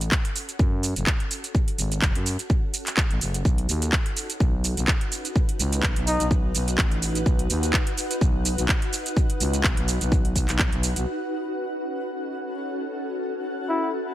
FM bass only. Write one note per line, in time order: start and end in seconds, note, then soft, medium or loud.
0.00 0.10 A1 medium
0.59 0.94 F#2 medium
0.96 1.05 F#1 loud
1.78 2.01 G#1 medium
2.02 2.13 F#1 loud
2.15 2.37 F#2 medium
3.11 3.20 A1 loud
3.21 3.43 F#1 loud
3.45 3.67 B1 medium
3.69 3.91 D#2 loud
4.40 4.75 B1 medium
4.77 4.86 B1 loud
5.59 5.81 C#2 loud
5.83 5.94 B1 loud
5.96 6.18 B1 medium
6.20 6.53 B1 loud
6.55 6.77 B1 loud
6.78 7.24 A1 loud
7.26 7.48 B1 medium
7.50 7.72 D#2 medium
8.21 8.56 B1 loud
8.58 8.67 B1 medium
9.40 9.62 C#2 medium
9.64 9.75 B1 loud
9.77 9.99 B1 loud
10.01 10.34 B1 loud
10.36 10.47 B1 loud
10.49 10.70 B1 medium
10.73 10.94 B1 loud
10.96 11.05 B1 medium